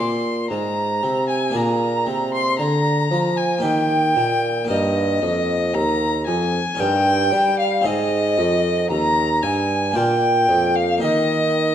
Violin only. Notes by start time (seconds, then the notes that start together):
0.00 C6
0.50 A#5
1.29 G#5
1.56 A#5
2.34 C6
2.59 A#5
3.37 G#5
3.64 G5
4.70 D#5
5.74 A#5
6.26 G#5
6.80 G5
7.59 F5
7.85 D#5
8.90 A#5
9.43 G#5
9.96 G5
10.76 F5
11.02 D#5